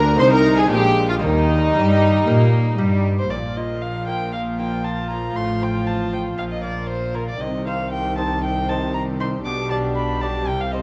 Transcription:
0.00 0.18 D2 medium
0.00 0.15 D3 medium
0.00 0.18 D3 medium
0.00 0.14 A#3 medium
0.00 0.14 D4 medium
0.00 0.15 D4 medium
0.00 0.15 F4 medium
0.00 0.18 A#4 medium
0.00 0.21 A#4 medium
0.00 0.19 A#5 loud
0.16 0.70 C2 medium
0.16 0.70 C3 medium
0.16 0.66 C3 medium
0.16 0.67 C4 medium
0.16 0.68 D#4 medium
0.16 0.70 D#4 medium
0.16 0.32 C5 loud
0.16 0.24 C6 loud
0.32 0.57 A#4 medium
0.32 0.58 A#4 medium
0.32 0.57 A#5 loud
0.57 0.70 G#4 medium
0.57 0.70 G#5 loud
0.66 1.18 G#3 medium
0.66 1.19 D4 medium
0.66 1.20 F4 medium
0.70 1.21 A#1 medium
0.70 1.18 A#2 medium
0.70 1.21 A#2 medium
0.70 1.22 G#3 medium
0.70 1.08 G4 medium
0.70 1.09 G4 medium
0.70 1.09 G5 medium
1.09 1.14 F4 medium
1.09 1.15 F4 medium
1.09 1.15 F5 medium
1.19 1.73 D#2 medium
1.19 1.73 D#3 medium
1.19 1.71 D#3 medium
1.19 3.11 G3 medium
1.19 2.26 A#3 medium
1.19 3.26 D#4 medium
1.19 3.01 D#4 medium
1.19 3.02 D#4 medium
1.19 3.01 D#5 loud
1.74 2.26 G2 medium
1.74 2.25 G3 medium
1.74 2.23 G3 medium
2.26 2.78 A#2 medium
2.26 2.78 A#3 medium
2.26 2.75 A#3 medium
2.78 3.30 G2 medium
2.78 3.29 G3 medium
2.78 3.26 G3 medium
3.19 3.31 C5 medium
3.30 5.32 A#1 soft
3.30 5.31 A#2 soft
3.30 7.36 F3 soft
3.30 7.36 F4 soft
3.30 5.32 A#4 soft
3.30 3.58 D5 medium
3.56 4.04 A#3 soft
3.56 4.04 F4 soft
3.56 3.83 D#5 medium
3.82 4.07 F5 soft
4.07 4.31 A#3 soft
4.07 4.31 F4 soft
4.07 4.32 G5 medium
4.33 4.41 F5 medium
4.58 5.06 A#3 soft
4.58 5.06 F4 soft
4.58 4.86 G5 medium
4.84 5.09 A5 medium
5.10 5.33 A#3 soft
5.10 5.33 F4 soft
5.10 5.37 A#5 medium
5.35 6.36 A1 soft
5.35 6.35 A2 soft
5.35 6.34 A2 soft
5.35 6.36 C5 soft
5.35 5.64 C6 medium
5.62 6.09 C4 soft
5.62 6.09 F4 soft
5.62 5.88 G5 medium
5.87 6.12 A5 medium
6.12 6.35 C4 soft
6.12 6.36 F4 soft
6.12 6.21 G5 medium
6.37 7.39 A#1 soft
6.37 7.38 A#2 soft
6.37 7.36 A#2 soft
6.37 7.41 A#4 soft
6.37 6.43 F5 medium
6.51 6.63 D#5 medium
6.63 7.11 A#3 soft
6.63 7.11 F4 soft
6.63 6.89 D5 medium
6.89 7.16 C5 medium
7.14 7.38 A#3 soft
7.14 7.38 F4 soft
7.14 7.28 A#4 medium
7.29 7.42 D5 medium
7.40 9.41 C2 soft
7.40 9.41 C3 soft
7.40 9.41 D#3 soft
7.40 9.41 C4 soft
7.40 10.82 G4 soft
7.40 7.66 D#5 medium
7.67 8.14 D#4 soft
7.67 8.14 C5 soft
7.67 7.92 F5 medium
7.93 8.17 G5 medium
8.18 8.41 D#4 soft
8.18 8.41 C5 soft
8.18 8.43 A5 medium
8.44 8.70 G5 medium
8.69 9.16 D#4 soft
8.69 9.16 C5 soft
8.69 8.93 A5 medium
8.94 9.02 A#5 medium
9.20 9.43 D#4 soft
9.20 9.43 C5 soft
9.20 9.28 C6 medium
9.45 10.45 B1 medium
9.45 10.45 B2 medium
9.45 10.43 B2 soft
9.45 10.82 G3 medium
9.45 10.45 D4 soft
9.45 9.69 D6 medium
9.70 10.18 G4 soft
9.70 10.18 D5 soft
9.70 9.78 A5 medium
9.96 10.22 B5 medium
10.21 10.45 G4 soft
10.21 10.45 D5 soft
10.21 10.49 A5 medium
10.46 10.82 C2 medium
10.46 10.82 C3 medium
10.46 10.82 C3 soft
10.46 10.82 C4 soft
10.46 10.62 G5 medium
10.61 10.73 F5 medium
10.72 10.82 G4 soft
10.72 10.82 C5 soft
10.72 10.82 D#5 medium

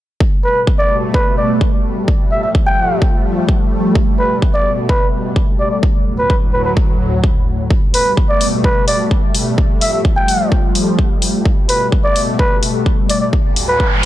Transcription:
0.20 2.06 B2 medium
0.20 5.79 G3 medium
0.20 2.06 A3 medium
0.20 kick loud
0.44 0.63 B4 medium
0.67 kick loud
0.79 0.98 D5 medium
1.14 1.33 B4 medium
1.14 kick loud
1.38 1.57 D5 medium
1.61 kick loud
2.08 3.94 F3 medium
2.08 5.79 A3 medium
2.08 kick loud
2.31 2.39 E5 medium
2.43 2.51 E5 medium
2.55 kick loud
2.67 3.02 G5 medium
3.02 kick loud
3.49 kick loud
3.95 5.81 B2 medium
3.95 kick loud
4.19 4.38 B4 medium
4.42 kick loud
4.54 4.73 D5 medium
4.89 5.08 B4 medium
4.89 kick loud
5.36 kick loud
5.60 5.67 D5 medium
5.71 5.79 D5 medium
5.83 7.69 D2 medium
5.83 7.69 A2 medium
5.83 7.69 F#3 medium
5.83 kick loud
6.18 6.37 B4 medium
6.30 kick loud
6.53 6.61 B4 medium
6.65 6.73 B4 medium
6.77 kick loud
7.24 kick loud
7.70 9.56 B2 medium
7.70 13.29 G3 medium
7.70 11.42 A3 medium
7.70 kick loud
7.94 8.13 B4 medium
7.94 open hi-hat medium
8.17 kick loud
8.29 8.48 D5 medium
8.41 open hi-hat medium
8.64 8.83 B4 medium
8.64 kick loud
8.88 9.07 D5 medium
8.88 open hi-hat medium
9.11 kick loud
9.35 open hi-hat medium
9.58 11.44 F3 medium
9.58 kick loud
9.81 9.89 E5 medium
9.81 open hi-hat medium
9.93 10.01 E5 medium
10.05 kick loud
10.17 10.52 G5 medium
10.28 open hi-hat medium
10.52 kick loud
10.75 open hi-hat medium
10.99 kick loud
11.22 open hi-hat medium
11.45 13.31 B2 medium
11.45 13.31 A3 medium
11.45 kick loud
11.69 11.88 B4 medium
11.69 open hi-hat medium
11.92 kick loud
12.04 12.23 D5 medium
12.16 open hi-hat medium
12.39 12.58 B4 medium
12.39 kick loud
12.63 open hi-hat medium
12.86 kick loud
13.10 13.17 D5 medium
13.10 open hi-hat medium
13.21 13.29 D5 medium
13.33 14.05 D2 medium
13.33 14.05 A2 medium
13.33 14.05 F#3 medium
13.33 kick loud
13.33 noise sweep medium
13.56 open hi-hat medium
13.68 13.87 B4 medium
13.80 kick loud

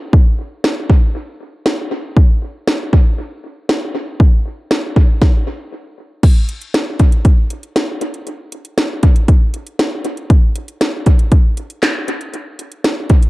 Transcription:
0.13 kick loud
0.64 snare loud
0.90 kick medium
1.66 snare loud
2.17 kick loud
2.67 snare loud
2.93 kick medium
3.69 snare loud
4.20 kick loud
4.71 snare loud
4.96 kick medium
5.22 kick loud
5.22 snare medium
6.23 kick loud
6.23 closed hi-hat medium
6.23 crash medium
6.49 closed hi-hat medium
6.61 closed hi-hat medium
6.74 snare loud
6.74 closed hi-hat medium
6.99 kick medium
6.99 closed hi-hat medium
7.12 closed hi-hat medium
7.25 kick medium
7.25 closed hi-hat medium
7.50 closed hi-hat medium
7.63 closed hi-hat medium
7.76 snare loud
7.76 closed hi-hat medium
8.01 closed hi-hat medium
8.14 closed hi-hat soft
8.27 closed hi-hat medium
8.52 closed hi-hat medium
8.65 closed hi-hat medium
8.78 snare loud
8.78 closed hi-hat medium
9.03 kick medium
9.03 closed hi-hat medium
9.16 closed hi-hat medium
9.28 kick medium
9.28 closed hi-hat medium
9.54 closed hi-hat medium
9.67 closed hi-hat medium
9.79 snare loud
9.79 closed hi-hat medium
10.05 closed hi-hat medium
10.17 closed hi-hat medium
10.30 kick loud
10.30 closed hi-hat medium
10.56 closed hi-hat medium
10.68 closed hi-hat medium
10.81 snare loud
10.81 closed hi-hat medium
11.06 kick medium
11.06 closed hi-hat medium
11.19 closed hi-hat medium
11.32 kick medium
11.32 closed hi-hat medium
11.57 closed hi-hat medium
11.70 closed hi-hat medium
11.83 snare loud
11.83 clap medium
11.83 closed hi-hat medium
12.08 closed hi-hat medium
12.21 closed hi-hat soft
12.34 closed hi-hat medium
12.59 closed hi-hat medium
12.72 closed hi-hat medium
12.84 snare loud
12.84 closed hi-hat medium
13.10 kick medium
13.10 closed hi-hat medium
13.23 closed hi-hat medium

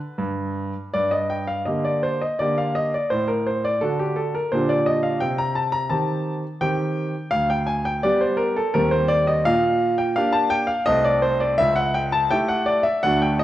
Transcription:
0.00 0.18 B4 medium
0.18 0.71 G2 medium
0.94 1.66 G2 soft
0.94 1.12 D5 medium
1.11 1.30 D#5 medium
1.30 1.49 G5 medium
1.47 1.67 F5 medium
1.65 2.18 D3 soft
1.65 2.19 A#3 soft
1.65 2.19 G4 soft
1.65 1.85 D#5 medium
1.85 2.03 D5 medium
2.03 2.21 C5 medium
2.21 2.39 D#5 medium
2.39 2.91 D3 soft
2.39 2.92 A#3 soft
2.39 2.92 G4 soft
2.39 2.57 D5 medium
2.58 2.75 F5 medium
2.75 2.93 D#5 medium
2.94 3.12 D5 medium
3.10 3.81 A2 medium
3.10 3.29 C5 medium
3.28 3.46 A#4 medium
3.47 3.65 C5 medium
3.65 3.82 D5 medium
3.81 4.33 D3 soft
3.81 4.34 D4 soft
3.81 4.34 F#4 soft
3.81 4.00 A4 medium
4.00 4.17 G4 medium
4.16 4.34 A4 medium
4.35 4.53 A#4 medium
4.52 5.21 A#2 medium
4.52 5.20 D3 soft
4.52 5.20 D4 soft
4.52 5.20 G4 soft
4.52 4.70 C5 medium
4.69 4.88 D5 medium
4.86 5.05 D#5 medium
5.03 5.22 F5 medium
5.20 5.91 C3 medium
5.20 5.40 G5 medium
5.38 5.57 A#5 medium
5.55 5.75 A5 medium
5.72 5.92 A#5 medium
5.90 6.42 D#3 soft
5.90 6.42 C4 soft
5.90 6.43 G4 soft
5.90 6.33 A5 medium
6.61 7.13 D#3 soft
6.61 7.13 C4 soft
6.61 7.14 G4 soft
6.61 7.33 G5 medium
7.31 8.02 D2 medium
7.31 7.50 F5 medium
7.50 7.69 G5 medium
7.67 7.86 G#5 medium
7.85 8.04 G5 medium
8.03 8.55 G3 soft
8.03 8.55 B3 soft
8.03 8.56 G4 soft
8.03 8.22 D5 medium
8.21 8.40 C5 medium
8.37 8.56 A#4 medium
8.56 8.75 A4 medium
8.74 9.44 D#2 medium
8.74 9.42 G3 soft
8.74 9.43 C4 soft
8.74 9.43 G4 soft
8.74 8.93 A#4 medium
8.91 9.10 C5 medium
9.08 9.28 D5 medium
9.27 9.46 D#5 medium
9.45 10.15 A#2 medium
9.45 9.99 F5 loud
9.98 10.16 G5 medium
10.16 10.68 A#3 soft
10.16 10.68 D4 soft
10.16 10.69 G4 medium
10.16 10.34 F5 medium
10.32 10.51 A5 medium
10.50 10.69 G5 loud
10.67 10.86 F5 medium
10.86 11.57 C2 medium
10.86 11.54 A3 soft
10.86 11.55 C4 soft
10.86 11.55 A4 soft
10.86 11.05 D#5 loud
11.04 11.23 D5 medium
11.22 11.41 C5 medium
11.40 11.59 D5 medium
11.58 12.29 C#2 medium
11.58 11.76 E5 loud
11.75 11.94 F#5 medium
11.94 12.13 G5 medium
12.12 12.31 A5 medium
12.30 12.83 A3 soft
12.30 12.83 E4 soft
12.30 12.83 G4 medium
12.30 12.49 G5 medium
12.48 12.67 F#5 medium
12.66 12.84 D5 medium
12.83 13.02 E5 medium
13.03 13.44 D2 medium
13.03 13.44 A3 soft
13.03 13.44 D4 soft
13.03 13.44 F#4 soft
13.03 13.21 F#5 loud
13.22 13.39 G5 medium
13.39 13.44 D#5 medium

